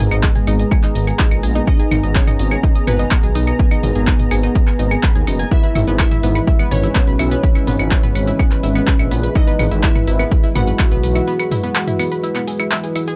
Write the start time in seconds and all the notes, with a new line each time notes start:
Already playing: G#3 B3 G#4 A#5
0.11 G#1 D#4 D#5, closed hi-hat, claves
0.23 D#5 D#6, kick, clap, closed hi-hat
0.35 G#4 G#5, closed hi-hat, mid tom
0.47 G#1 D#4 D#5, open hi-hat, claves
0.59 D#5 D#6, closed hi-hat
0.71 G#4 G#5, kick, closed hi-hat, claves
0.83 D#4 D#5, clap, closed hi-hat
0.95 G#1 D#5 D#6, open hi-hat
1.07 G#4 G#5, closed hi-hat, claves
1.19 D#4 D#5, kick, clap, closed hi-hat
1.31 A#1 D#5 D#6, closed hi-hat, claves
1.43 A#1 G#4 G#5, open hi-hat
1.55 D#4 D#5, closed hi-hat
1.67 D#4 D#5 D#6, kick, closed hi-hat, claves
1.79 G#4 G#5, closed hi-hat
1.91 G#1 D#4 D#5, mid tom, open hi-hat, claves
2.03 G#1 D#5 D#6, closed hi-hat
2.15 C#4 G#4 C#5 G#5, kick, clap, closed hi-hat
2.27 D#4 D#5, closed hi-hat, mid tom, claves
2.39 G#1 D#5 D#6, open hi-hat
2.51 G#4 G#5, closed hi-hat, claves
2.63 D#4 D#5, kick, closed hi-hat
2.75 D#5 D#6, closed hi-hat
2.87 G#1 B3 G#4 B4 G#5, mid tom, open hi-hat, claves
2.99 D#4 D#5, closed hi-hat
3.11 D#5 D#6, kick, clap, closed hi-hat, claves
3.23 B1 G#4 G#5, closed hi-hat
3.35 B1 D#4 D#5, open hi-hat
3.47 D#5 D#6, closed hi-hat, claves
3.59 G#4 G#5, kick, closed hi-hat
3.71 D#4 D#5, closed hi-hat, claves
3.83 G#1 D#5 D#6, mid tom, open hi-hat
3.95 G#1 G#4 G#5, closed hi-hat
4.07 D#4 D#5, kick, clap, closed hi-hat, claves
4.19 D#5 D#6, closed hi-hat, mid tom
4.31 G#1 G#4 G#5, open hi-hat, claves
4.43 D#4 D#5, closed hi-hat
4.55 D#5 D#6, kick, closed hi-hat
4.67 G#4 G#5, clap, closed hi-hat, claves
4.79 G#1 D#4 D#5, open hi-hat
4.91 G#4 G#5, closed hi-hat, claves
5.03 B4 B5, kick, clap, closed hi-hat
5.15 D#2 G#4 G#5, closed hi-hat
5.27 F#1 D#4 D#5, open hi-hat, claves
5.39 G#5 G#6, closed hi-hat
5.51 E3 G#3 B3 E4 B4 E5, kick, closed hi-hat
5.63 B4 B5, closed hi-hat
5.75 G#1 E4 E5, mid tom, open hi-hat, claves
5.87 G#1 B3 B4, closed hi-hat
5.99 E4 B4 E5 B5, kick, clap, closed hi-hat, claves
6.11 E4 E5, closed hi-hat, mid tom
6.23 G#1 B3 B4, open hi-hat
6.35 B4 B5, closed hi-hat, claves
6.47 E4 E5, kick, closed hi-hat
6.59 B3 B4, closed hi-hat, claves
6.71 G#1 C#4 B4 C#5 B5, mid tom, open hi-hat
6.83 E4 E5, closed hi-hat
6.95 B3 B4, kick, clap, closed hi-hat, claves
7.07 B1 B4 B5, closed hi-hat
7.19 B1 E4 E5, open hi-hat, claves
7.31 B3 B4, closed hi-hat
7.43 B4 B5, kick, closed hi-hat
7.55 E4 E5, closed hi-hat, claves
7.67 G#1 B3 B4, mid tom, open hi-hat
7.79 G#1 B4 B5, closed hi-hat, claves
7.91 E4 E5, kick, clap, closed hi-hat
8.03 B3 B4, closed hi-hat, mid tom
8.15 G#1 B4 B5, open hi-hat, claves
8.27 E4 E5, closed hi-hat
8.39 B3 B4, kick, closed hi-hat, claves
8.51 B4 B5, clap, closed hi-hat
8.63 G#1 E4 E5, open hi-hat
8.75 B3 B4, closed hi-hat, claves
8.87 B4 B5, kick, clap, closed hi-hat
8.99 A#1 E4 E5, closed hi-hat, claves
9.11 A#1 B3 B4, open hi-hat
9.23 B4 B5, closed hi-hat
9.35 D#4 E4 D#5 E5, kick, closed hi-hat, claves
9.47 B3 B4, closed hi-hat
9.59 G#1 B4 B5, mid tom, open hi-hat, claves
9.71 G#1 E4 E5, closed hi-hat
9.83 B3 E4 B4 E5, kick, clap, closed hi-hat
9.95 B4 B5, closed hi-hat, mid tom, claves
10.07 G#1 E4 E5, open hi-hat
10.19 B3 B4, closed hi-hat, claves
10.31 B4 B5, kick, closed hi-hat
10.43 E4 E5, closed hi-hat
10.55 G#1 B3 F#4 B4 F#5, mid tom, open hi-hat, claves
10.67 B4 B5, closed hi-hat
10.79 E4 E5, kick, clap, closed hi-hat, claves
10.91 B1 B3 B4, closed hi-hat
11.03 B1 B4 B5, open hi-hat
11.15 E4 E5, closed hi-hat, claves
11.27 B3 B4, closed hi-hat
11.39 B4 B5, closed hi-hat, claves
11.51 E4 E5, mid tom, open hi-hat
11.64 B3 B4, closed hi-hat
11.76 B4 B5, clap, closed hi-hat, claves
11.88 E4 E5, closed hi-hat, mid tom
11.99 B3 B4, open hi-hat, claves
12.12 B4 B5, closed hi-hat
12.24 E4 E5, closed hi-hat
12.36 B3 B4, clap, closed hi-hat, claves
12.47 G#4 G#5, open hi-hat
12.60 E4 E5, closed hi-hat, claves
12.72 E5 E6, clap, closed hi-hat
12.84 G#4 G#5, closed hi-hat
12.96 E4 E5, open hi-hat, claves
13.08 G#4 G#5, closed hi-hat